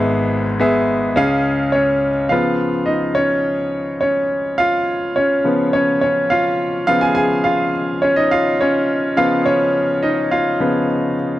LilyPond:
<<
  \new Staff \with { instrumentName = "Grand piano" } { \time 4/4 \key cis \mixolydian \tempo 4 = 105 << { r2. <cis' cis''>4 | <eis' eis''>4 <dis' dis''>8 <cis' cis''>4. <cis' cis''>4 | <eis' eis''>4 <cis' cis''>4 <cis' cis''>8 <cis' cis''>8 <eis' eis''>4 | <eis' eis''>16 <gis' gis''>16 <gis' gis''>8 <eis' eis''>4 <cis' cis''>16 <dis' dis''>16 <eis' eis''>8 <cis' cis''>4 |
<eis' eis''>8 <cis' cis''>4 <dis' dis''>8 <eis' eis''>4. r8 | } \\ { <b gis' e''>8 r8 <b gis' e''>4 <cis' gis' eis''>4. r8 | r1 | r1 | r1 |
r1 | } >> }
  \new Staff \with { instrumentName = "Grand piano" } { \clef bass \time 4/4 \key cis \mixolydian <gis,, gis,>2 <cis, cis>2 | <cis eis b>8 r2. r8 | r4. <cis eis b>8 r2 | <cis eis b>4. r2 r8 |
<cis eis b>4. r4 <cis eis b>8 r4 | }
>>